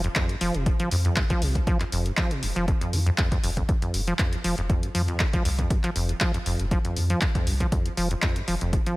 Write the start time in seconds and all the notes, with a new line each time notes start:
0.04 F2, closed hi-hat
0.15 F2, kick, clap, closed hi-hat
0.29 G2, closed hi-hat
0.41 F1 F3, open hi-hat
0.54 F1 C3, closed hi-hat
0.66 D#2, kick, closed hi-hat
0.80 F3, closed hi-hat
0.91 F2, open hi-hat
1.05 F2, closed hi-hat
1.16 G2, kick, clap, closed hi-hat
1.30 F3, kick, closed hi-hat
1.42 C2 C3, open hi-hat
1.55 D#2, kick, closed hi-hat
1.67 F3, kick, closed hi-hat
1.80 F2, clap, closed hi-hat
1.92 F1 F2, open hi-hat
2.06 G2, closed hi-hat
2.17 F3, kick, clap, closed hi-hat
2.31 C3, closed hi-hat
2.43 F1 D#2, open hi-hat
2.56 F1 F3, closed hi-hat
2.68 F2, kick, closed hi-hat
2.81 F2, closed hi-hat
2.93 F2 F3, open hi-hat
3.06 F2, closed hi-hat
3.18 F2, kick, clap, closed hi-hat
3.32 F2, kick, closed hi-hat
3.44 F1 F2, open hi-hat
3.57 F2, kick, closed hi-hat
3.69 F2, kick, closed hi-hat
3.82 F2, closed hi-hat
3.94 F1 G2, open hi-hat
4.07 F3, closed hi-hat
4.19 F2, kick, clap, closed hi-hat
4.33 D#2, closed hi-hat
4.44 F1 F3, open hi-hat
4.58 F1 F2, closed hi-hat
4.70 F2, kick, closed hi-hat
4.83 G2, closed hi-hat
4.95 F2 F3, open hi-hat
5.08 F2, closed hi-hat
5.20 D#2, kick, clap, closed hi-hat
5.33 F3, kick, closed hi-hat
5.45 C2 F2, open hi-hat
5.59 F2, kick, closed hi-hat
5.70 G2, kick, closed hi-hat
5.83 F3, clap, closed hi-hat
5.96 F1 F2, open hi-hat
6.09 D#2, closed hi-hat
6.20 F3, kick, clap, closed hi-hat
6.34 F2, closed hi-hat
6.46 F1 F2, open hi-hat
6.59 F1 G2, closed hi-hat
6.71 F3, kick, closed hi-hat
6.85 F2, closed hi-hat
6.96 D#2 F2, open hi-hat
7.10 F3, closed hi-hat
7.21 F2, kick, clap, closed hi-hat
7.35 F2, kick, closed hi-hat
7.47 C2 G2, open hi-hat
7.60 F3, kick, closed hi-hat
7.72 F2, kick, closed hi-hat
7.86 D#2, closed hi-hat
7.97 F1 F3, open hi-hat
8.11 F2, closed hi-hat
8.22 F2, kick, clap, closed hi-hat
8.36 G2, closed hi-hat
8.48 F1 F3, open hi-hat
8.61 F1 F2, closed hi-hat
8.73 D#2, kick, closed hi-hat
8.86 F3, closed hi-hat